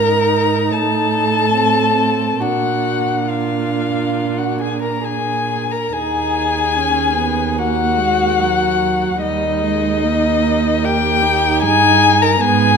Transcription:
Already playing: G#2 D#4 A#4 A#5
0.70 A2 A4 A5
1.53 C4
1.96 C4
2.40 A#2 D4 F#4 F#5
3.29 F4 F5
4.38 F#4 F#5
4.61 G#4 G#5
4.81 A#4 A#5
5.04 G#4 G#5
5.71 A#4 A#5
5.92 D#2 D#4 G#4 G#5
6.77 C#4
7.17 B3
7.58 A#3 F#4 F#5
7.97 G#3
8.39 F#3
9.20 D#2 G3 D#4 D#5
9.62 G#3
10.03 A#3
10.83 A#3 G4 G5
11.23 D#4
11.62 G2 G#4 G#5
12.22 A#4 A#5
12.41 G#2 B3 G#4 G#5

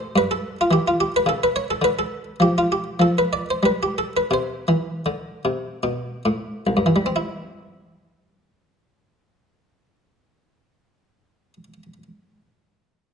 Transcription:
Already playing: C5
0.16 G2 B4
0.31 A4
0.61 F4
0.71 E3 G4
0.88 F4
1.00 G4
1.16 B4
1.26 C#3 A4
1.43 B4
1.56 C#5
1.71 A4
1.82 D3 B4
1.99 A4
2.40 F3 G4
2.58 F4
2.72 G4
2.99 F3 A4
3.18 B4
3.33 D5
3.50 C5
3.63 G3 B4
3.83 G4
3.98 A4
4.17 B4
4.31 C3 C5
4.68 E3
5.06 D3
5.45 C3
5.83 B2
6.25 A2
6.67 C2
6.77 G2
6.86 E3
6.96 G3
7.06 C4
7.16 E4

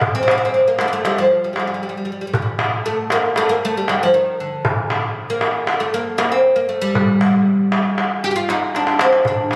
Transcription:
0.01 darbuka dum
0.15 C4
0.23 C4
0.28 C4, darbuka tek
0.38 C4
0.45 C4
0.54 C4
0.68 A#3
0.79 A3, darbuka tek
0.88 A#3
0.93 A3
1.05 G3, darbuka tek
1.18 F3
1.30 darbuka ka
1.44 G3
1.53 G3, darbuka tek
1.59 G3
1.67 G3
1.74 G3
1.82 G3, darbuka ka
1.89 G3
1.97 G3
2.05 G3
2.12 G3
2.21 G3
2.27 G3
2.34 G3, darbuka dum
2.42 G3
2.59 darbuka tek
2.86 A3
3.10 A#3, darbuka tek
3.36 A3, darbuka tek
3.49 A#3
3.62 A3, darbuka ka
3.77 G3
3.88 G3, darbuka tek
4.03 F3
4.13 D#3, darbuka ka
4.40 D3
4.65 darbuka dum
4.90 darbuka tek
5.30 A#3
5.41 darbuka tek
5.67 darbuka tek
5.80 A3
5.93 A#3, darbuka ka
6.18 A#3, darbuka tek
6.32 C4
6.44 darbuka ka
6.56 A#3
6.69 A3
6.81 G3
6.95 darbuka dum
7.21 darbuka tek
7.72 darbuka tek
7.98 darbuka tek
8.23 G4, darbuka ka
8.31 G4
8.36 F4
8.49 D#4, darbuka tek
8.75 D4, darbuka tek
8.87 darbuka ka
8.99 C4, darbuka tek
9.13 darbuka ka
9.25 D4, darbuka dum
9.51 darbuka tek

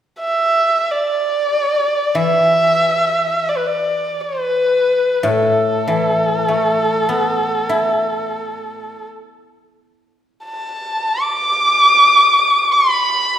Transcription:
0.20 E5
0.91 D5
2.15 E3 E5
3.49 D5
3.57 B4
3.67 D5
4.21 B4
5.23 A2 A4
5.88 E3
6.48 A3
7.09 B3
7.69 E4
10.44 A5
11.22 D6
12.71 B5

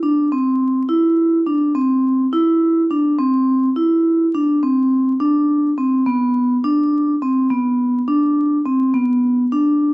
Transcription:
0.03 D4
0.32 C4
0.89 E4
1.47 D4
1.75 C4
2.33 E4
2.91 D4
3.19 C4
3.76 E4
4.34 D4
4.63 C4
5.20 D4
5.78 C4
6.06 B3
6.64 D4
7.22 C4
7.50 B3
8.08 D4
8.66 C4
8.94 B3
9.52 D4

